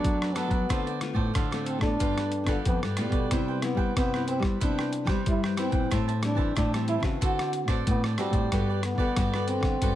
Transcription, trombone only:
0.00 0.37 D4 loud
0.35 1.35 B3 medium
1.67 1.82 C4 medium
1.83 2.61 D4 loud
2.67 2.82 B3 medium
2.98 3.65 G3 medium
3.63 3.96 B3 medium
3.97 4.27 B3 medium
4.28 4.43 C4 medium
4.63 5.08 D4 medium
5.28 5.43 E4 medium
5.59 5.95 C4 medium
6.25 6.55 D4 medium
6.58 6.72 D4 loud
6.89 7.04 E4 loud
7.23 7.68 F#4 medium
7.88 8.03 B3 medium
8.19 8.80 G3 medium
8.84 9.50 B3 loud
9.49 9.95 C4 loud

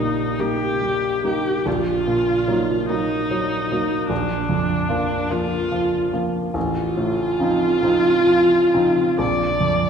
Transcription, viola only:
0.00 0.42 D#4 soft
0.40 1.25 G4 medium
1.25 1.68 G4 medium
1.66 2.89 F4 medium
2.90 4.09 D#4 medium
4.09 5.33 D4 medium
5.31 6.14 F4 medium
6.55 9.16 F4 medium
9.20 9.90 D5 medium

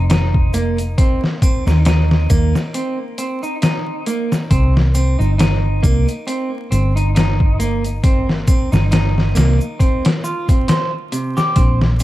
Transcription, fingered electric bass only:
0.00 0.95 F1 medium
1.67 2.27 D#2 medium
2.30 2.52 D#2 medium
4.51 5.15 C2 medium
5.20 5.80 G1 medium
5.84 6.05 C2 medium
6.72 8.44 G1 medium
8.73 9.33 G1 medium
9.37 9.58 C2 loud
11.56 12.03 A#1 medium

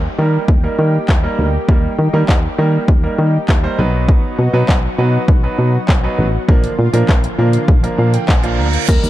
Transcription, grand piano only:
0.19 0.41 G3 medium
0.19 0.41 A#3 medium
0.19 0.41 D#4 medium
0.19 0.41 A#4 medium
0.64 0.93 G3 medium
0.64 0.93 A#3 medium
0.64 0.94 D#4 medium
0.64 0.94 A#4 medium
1.23 1.46 G3 medium
1.23 1.46 A#3 medium
1.23 1.46 D#4 medium
1.23 1.46 A#4 loud
1.68 1.91 G3 medium
1.68 1.91 A#3 medium
1.68 1.91 D#4 medium
1.68 1.91 A#4 medium
2.13 2.36 G3 medium
2.13 2.36 A#3 medium
2.13 2.36 D#4 medium
2.13 2.36 A#4 loud
2.58 2.81 G3 medium
2.58 2.81 A#3 medium
2.58 2.81 D#4 medium
2.58 2.81 A#4 medium
3.03 3.33 G3 medium
3.03 3.33 A#3 medium
3.03 3.33 D#4 medium
3.03 3.34 A#4 medium
3.63 3.78 G3 medium
3.63 3.79 A#3 medium
3.63 3.77 D#4 medium
3.63 3.79 C5 loud
3.78 4.38 F#3 medium
3.78 4.39 B3 medium
3.78 4.39 D#4 medium
3.78 4.39 B4 loud
4.53 4.76 F#3 medium
4.53 4.76 B3 medium
4.53 4.76 D#4 medium
4.53 4.76 B4 loud
4.98 5.21 F#3 medium
4.98 5.21 B3 medium
4.98 5.21 D#4 medium
4.98 5.21 B4 loud
5.43 5.73 F#3 medium
5.43 5.73 B3 medium
5.43 5.73 D#4 medium
5.43 5.74 B4 medium
6.03 6.26 F#3 medium
6.03 6.26 B3 medium
6.03 6.26 D#4 medium
6.03 6.26 B4 loud
6.48 6.71 F3 medium
6.48 6.71 A#3 medium
6.48 6.71 D4 medium
6.48 6.71 A#4 loud
6.93 7.16 F3 medium
6.93 7.16 A#3 medium
6.93 7.16 D4 medium
6.93 7.16 A#4 loud
7.38 7.61 F3 medium
7.38 7.61 A#3 medium
7.38 7.61 D4 medium
7.38 7.61 A#4 loud
7.83 8.13 F3 medium
7.83 8.13 A#3 medium
7.83 8.13 D4 medium
7.83 8.14 A#4 medium
7.99 8.13 F5 medium
8.14 8.28 G5 medium
8.29 8.57 G#5 medium
8.43 8.66 F3 medium
8.43 8.66 A#3 medium
8.43 8.66 D4 medium
8.43 8.66 F4 loud
8.59 8.87 A#5 medium
8.88 9.10 G3 medium
8.88 9.10 A#3 medium
8.88 9.10 D#4 medium
8.88 9.10 A#4 medium

